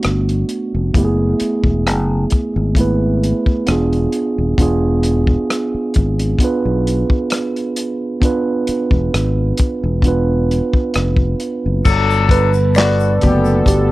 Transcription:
0.00 0.57 A3 medium
0.00 0.58 B3 medium
0.00 0.59 D4 medium
0.00 0.60 F#4 medium
0.00 closed hi-hat medium
0.05 0.43 G1 medium
0.05 cross-stick medium
0.29 closed hi-hat soft
0.49 closed hi-hat medium
0.75 0.92 F1 medium
0.94 1.33 F#1 medium
0.94 2.39 A3 medium
0.94 2.40 B3 medium
0.94 2.40 E4 medium
0.94 kick medium
0.94 closed hi-hat medium
0.98 1.03 G4 medium
1.05 2.44 G#4 medium
1.40 muted fingered electric bass stroke soft
1.40 closed hi-hat medium
1.64 1.87 E1 medium
1.64 kick medium
1.87 2.24 F#1 medium
1.87 cross-stick medium
1.87 closed hi-hat medium
2.30 kick medium
2.30 closed hi-hat medium
2.56 3.32 G#1 medium
2.75 3.67 A3 medium
2.75 3.65 B3 medium
2.75 3.68 E4 medium
2.75 kick medium
2.75 closed hi-hat medium
2.81 3.69 B4 medium
3.23 closed hi-hat medium
3.46 kick medium
3.67 4.06 E1 medium
3.67 4.41 B3 medium
3.67 4.42 D4 medium
3.67 4.42 F4 medium
3.67 cross-stick loud
3.67 closed hi-hat medium
3.71 4.43 G#4 medium
3.93 closed hi-hat soft
4.12 closed hi-hat medium
4.38 4.56 D#1 medium
4.58 5.35 E1 medium
4.58 6.03 B3 medium
4.58 6.03 D4 medium
4.58 6.04 F4 medium
4.58 kick loud
4.58 closed hi-hat medium
4.62 6.05 G#4 medium
5.03 closed hi-hat medium
5.27 kick medium
5.50 cross-stick medium
5.50 closed hi-hat medium
5.74 muted fingered electric bass stroke soft
5.94 6.34 G#1 medium
5.94 kick medium
5.94 closed hi-hat medium
6.19 closed hi-hat medium
6.39 7.85 B3 medium
6.39 7.85 D4 medium
6.39 muted fingered electric bass stroke soft
6.39 kick medium
6.39 closed hi-hat medium
6.43 7.86 F4 medium
6.43 7.87 B4 medium
6.65 7.03 B1 medium
6.87 closed hi-hat medium
7.10 kick medium
7.30 cross-stick loud
7.30 closed hi-hat medium
7.56 closed hi-hat soft
7.76 closed hi-hat medium
8.21 9.66 B3 medium
8.21 9.67 D4 medium
8.21 9.68 F4 medium
8.21 kick medium
8.21 closed hi-hat medium
8.25 9.68 B4 medium
8.67 muted fingered electric bass stroke soft
8.67 closed hi-hat medium
8.91 9.09 E1 medium
8.91 kick medium
9.14 9.52 G#1 medium
9.14 cross-stick medium
9.14 closed hi-hat medium
9.57 kick medium
9.57 closed hi-hat medium
9.84 10.60 E1 medium
10.02 11.48 B3 medium
10.02 11.49 D4 medium
10.02 11.50 F4 medium
10.02 kick medium
10.02 closed hi-hat medium
10.08 11.50 B4 medium
10.51 closed hi-hat medium
10.73 kick medium
10.94 11.33 F1 medium
10.94 cross-stick medium
10.94 closed hi-hat medium
11.17 kick medium
11.40 closed hi-hat medium
11.66 11.83 F#1 medium
11.85 13.18 G1 loud
11.85 13.92 D3 medium
11.85 12.51 F#3 medium
11.85 13.92 B3 medium
11.85 12.51 D4 medium
11.85 13.92 A4 loud
11.85 12.51 A4 medium
11.85 kick loud
11.85 crash medium
11.85 shaker medium
12.10 shaker soft
12.29 12.78 B4 loud
12.29 kick loud
12.29 closed hi-hat medium
12.53 shaker soft
12.75 13.13 D3 medium
12.75 13.13 B3 medium
12.75 13.13 F#4 medium
12.75 13.70 D5 loud
12.75 finger snap medium
12.75 snare loud
12.75 closed hi-hat medium
12.75 shaker medium
12.79 clap medium
13.00 shaker soft
13.21 13.61 F#1 medium
13.21 13.58 D3 medium
13.21 13.92 A3 medium
13.21 13.58 B3 medium
13.21 13.92 B3 medium
13.21 13.92 F#4 medium
13.21 13.58 G4 medium
13.21 kick medium
13.21 closed hi-hat medium
13.45 shaker soft
13.66 13.92 G1 medium
13.66 13.92 G4 medium
13.66 kick medium
13.66 closed hi-hat medium
13.66 shaker medium

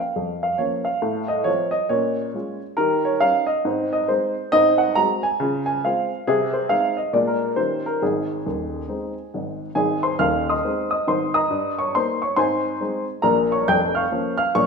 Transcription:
0.00 0.41 F5 medium
0.16 0.53 F2 soft
0.43 0.60 F5 medium
0.58 0.83 F3 soft
0.58 0.83 A#3 soft
0.58 0.83 C#4 soft
0.58 0.87 C#5 medium
0.85 1.30 F5 medium
1.02 1.40 A2 medium
1.28 1.46 D#5 medium
1.44 1.70 F3 soft
1.44 1.70 C4 soft
1.44 1.70 F4 soft
1.44 1.73 C#5 medium
1.71 1.89 D#5 medium
1.89 2.27 A#2 medium
1.89 2.15 C#4 soft
1.89 2.61 C#5 medium
2.34 2.58 G#3 soft
2.34 2.59 C#4 soft
2.34 2.59 F4 soft
2.77 3.15 D#3 medium
2.77 3.03 G4 soft
2.77 3.05 A#4 medium
3.05 3.21 C#5 medium
3.21 3.45 G3 soft
3.21 3.46 C#4 soft
3.21 3.46 D#4 soft
3.21 3.49 F5 loud
3.46 3.91 D#5 medium
3.65 4.02 G#2 medium
3.65 3.90 C4 medium
3.93 4.09 D#5 medium
4.08 4.33 G#3 soft
4.08 4.34 C4 soft
4.08 4.34 D#4 soft
4.08 4.52 C5 medium
4.52 4.90 G#2 medium
4.52 4.78 C4 medium
4.52 4.80 D#5 loud
4.78 4.95 F#5 medium
4.95 5.20 G#3 soft
4.95 5.21 C4 soft
4.95 5.21 F#4 soft
4.95 5.23 A#5 loud
5.23 5.64 G#5 medium
5.40 5.77 C#3 medium
5.40 5.66 F4 soft
5.66 5.83 G#5 medium
5.84 6.08 G#3 soft
5.84 6.09 C4 soft
5.84 6.09 F4 soft
5.84 6.28 F5 medium
6.27 6.65 C3 medium
6.27 6.55 G#4 medium
6.53 6.70 C5 medium
6.69 6.94 G#3 soft
6.69 6.94 C4 soft
6.69 6.95 D#4 soft
6.69 6.97 F5 medium
6.97 7.14 D#5 medium
7.13 7.51 A#2 medium
7.13 7.38 G#3 soft
7.13 7.39 D4 soft
7.13 7.39 F4 soft
7.13 7.28 D5 medium
7.27 7.58 A#4 medium
7.56 7.94 D#3 medium
7.56 7.82 G3 soft
7.56 7.82 C#4 soft
7.56 7.83 F4 soft
7.56 7.83 G4 soft
7.56 7.85 C5 medium
7.86 8.02 A#4 medium
8.02 8.37 G#1 medium
8.02 8.37 G#2 medium
8.02 9.60 G#4 medium
8.46 8.81 D#1 medium
8.46 8.80 D#2 medium
8.89 9.13 G#3 soft
8.89 9.13 C4 soft
8.89 9.13 D#4 soft
9.34 9.68 G#1 soft
9.34 9.68 G#2 soft
9.75 10.11 G#1 medium
9.75 10.10 G#2 medium
9.75 10.02 G#4 medium
9.75 10.03 G#5 medium
10.03 10.18 C5 medium
10.03 10.19 C6 medium
10.19 10.54 D#1 medium
10.19 10.54 D#2 medium
10.19 10.46 F5 medium
10.19 10.47 F6 medium
10.49 10.89 D#5 medium
10.49 10.89 C6 medium
10.49 10.89 D#6 medium
10.65 10.88 G#3 soft
10.65 10.88 C4 soft
10.65 10.88 D#4 soft
10.91 11.06 D#5 medium
10.91 11.07 D#6 medium
11.07 11.42 G#1 soft
11.07 11.42 G#2 medium
11.07 11.33 C5 medium
11.07 11.35 C6 medium
11.34 11.75 D#5 medium
11.34 11.75 A#5 medium
11.34 11.78 D#6 medium
11.50 11.87 G2 medium
11.79 11.93 C#5 medium
11.79 11.94 C#6 medium
11.95 12.19 A#3 soft
11.95 12.19 D#4 soft
11.95 12.21 C5 medium
11.95 12.22 C6 medium
12.22 12.37 C#5 medium
12.22 12.37 C#6 medium
12.36 12.74 G#2 medium
12.36 12.62 C4 medium
12.36 13.04 C5 medium
12.36 13.04 G#5 medium
12.36 13.07 C6 medium
12.81 13.04 G#3 soft
12.81 13.05 C4 soft
12.81 13.05 D#4 soft
13.22 13.58 A#1 medium
13.22 13.58 A#2 medium
13.22 13.49 A#4 medium
13.22 13.50 A#5 medium
13.52 13.67 C#5 medium
13.52 13.68 C#6 medium
13.68 14.03 F1 medium
13.68 14.03 F2 medium
13.68 13.94 G5 medium
13.68 13.95 G6 medium
13.95 14.36 F5 medium
13.95 14.36 C#6 medium
13.95 14.36 F6 medium
14.12 14.36 F3 soft
14.12 14.35 A#3 soft
14.12 14.35 C#4 soft
14.38 14.53 F5 medium
14.38 14.54 F6 medium
14.55 14.67 A#1 medium
14.55 14.67 A#2 medium
14.55 14.67 C#5 medium
14.55 14.67 C#6 loud

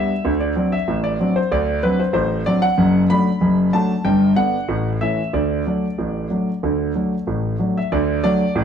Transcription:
0.00 0.10 G3 soft
0.00 0.11 B3 soft
0.00 0.11 D4 soft
0.00 0.31 E5 medium
0.25 0.52 D2 medium
0.25 0.51 D3 medium
0.40 0.70 D5 medium
0.56 0.73 F#3 soft
0.56 0.74 C4 soft
0.56 0.74 D4 medium
0.72 0.97 E5 medium
0.88 1.15 A1 medium
0.88 1.15 A2 medium
1.04 1.34 D5 medium
1.20 1.37 F#3 medium
1.20 1.38 C4 medium
1.20 1.38 D4 medium
1.36 1.51 C5 medium
1.52 1.78 D2 medium
1.52 1.78 D3 medium
1.52 1.82 D5 medium
1.83 2.01 F#3 medium
1.83 2.01 C4 medium
1.83 2.01 D4 medium
1.83 1.99 B4 medium
2.00 2.12 C5 medium
2.13 2.41 A1 medium
2.13 2.41 A2 medium
2.13 2.39 C5 medium
2.46 2.64 F#3 medium
2.46 2.64 C4 medium
2.46 2.64 D4 medium
2.46 2.62 D5 loud
2.62 3.01 F#5 loud
2.78 3.05 F#1 medium
2.78 3.05 F#2 medium
3.10 3.28 F#3 soft
3.10 3.28 A3 medium
3.10 3.28 D4 medium
3.10 3.71 B5 loud
3.41 3.69 F#1 medium
3.41 3.69 F#2 medium
3.73 3.91 F#3 medium
3.73 3.92 A3 medium
3.73 3.92 D4 medium
3.73 4.04 A5 medium
4.05 4.32 G1 medium
4.05 4.32 G2 medium
4.05 4.31 G5 medium
4.36 4.55 D3 medium
4.36 4.55 B3 medium
4.36 4.55 D4 medium
4.36 4.88 F#5 loud
4.68 4.96 A1 medium
4.68 4.96 A2 medium
5.01 5.19 E3 soft
5.01 5.19 A3 soft
5.01 5.20 C#4 medium
5.01 5.32 E5 medium
5.33 5.61 D2 medium
5.33 5.61 D3 medium
5.33 7.14 D5 medium
5.66 5.84 F#3 soft
5.66 5.85 A3 soft
5.66 5.85 D4 soft
5.98 6.26 A1 medium
5.98 6.26 A2 medium
6.30 6.48 F#3 soft
6.30 6.48 A3 soft
6.30 6.49 D4 soft
6.63 6.91 D2 medium
6.63 6.91 D3 medium
6.95 7.13 F#3 soft
6.95 7.13 A3 soft
6.95 7.14 D4 soft
7.27 7.55 A1 medium
7.27 7.55 A2 medium
7.59 7.77 F#3 soft
7.59 7.77 A3 soft
7.59 7.77 D4 soft
7.77 7.93 E5 medium
7.92 8.19 D2 medium
7.92 8.19 D3 loud
7.92 8.22 D5 medium
8.24 8.41 F#3 medium
8.24 8.42 A3 medium
8.24 8.42 D4 medium
8.24 8.64 D5 loud
8.56 8.64 A1 medium
8.56 8.64 A2 medium

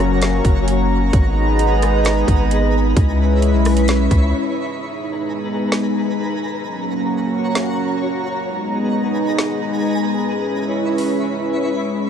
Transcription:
0.00 0.41 F#1 loud
0.00 1.11 F#3 medium
0.00 1.11 A#3 medium
0.00 1.11 C#4 medium
0.00 1.11 F#4 medium
0.00 1.11 C#5 medium
0.00 1.10 A#5 loud
0.00 1.10 A#5 medium
0.22 snare loud
0.22 closed hi-hat medium
0.45 1.11 F#1 loud
0.45 kick medium
0.45 closed hi-hat medium
0.68 closed hi-hat medium
1.13 2.24 G#1 loud
1.13 2.95 G#3 medium
1.13 2.95 B3 medium
1.13 2.95 D#4 medium
1.13 2.95 G#4 medium
1.13 2.95 B4 medium
1.13 2.95 A#5 loud
1.13 2.95 A#5 medium
1.13 kick loud
1.13 closed hi-hat medium
1.59 closed hi-hat medium
1.82 cross-stick medium
1.82 closed hi-hat medium
2.05 snare loud
2.05 closed hi-hat medium
2.28 2.94 G#1 loud
2.28 kick medium
2.28 closed hi-hat medium
2.51 closed hi-hat medium
2.96 3.55 C#2 loud
2.96 4.78 G#3 medium
2.96 4.78 C#4 medium
2.96 4.78 E4 medium
2.96 4.78 B4 medium
2.96 4.78 C#5 medium
2.96 4.78 B5 medium
2.96 kick loud
2.96 closed hi-hat medium
3.42 closed hi-hat medium
3.54 4.08 B1 loud
3.65 cross-stick medium
3.65 closed hi-hat soft
3.65 open hi-hat medium
3.77 closed hi-hat medium
3.88 snare loud
3.88 closed hi-hat medium
4.11 4.33 C#2 loud
4.11 kick loud
4.11 closed hi-hat medium
4.80 6.61 G#3 medium
4.80 6.61 B3 medium
4.80 6.61 D#4 medium
4.80 6.61 G#4 medium
4.80 6.61 B4 medium
4.80 8.42 A#5 medium
4.80 10.25 A#5 medium
5.72 snare loud
6.62 8.44 F#3 medium
6.62 8.44 A#3 medium
6.62 8.44 C#4 medium
6.62 8.44 F#4 medium
6.62 8.44 C#5 medium
7.55 snare loud
8.46 12.09 G#3 medium
8.46 10.27 B3 medium
8.46 10.27 D#4 medium
8.46 10.27 G#4 medium
8.46 10.27 B4 medium
8.46 10.27 A#5 medium
9.39 snare loud
10.29 12.10 C#4 medium
10.29 12.10 E4 medium
10.29 12.10 B4 medium
10.29 12.10 C#5 medium
10.29 12.10 B5 medium
10.98 open hi-hat medium

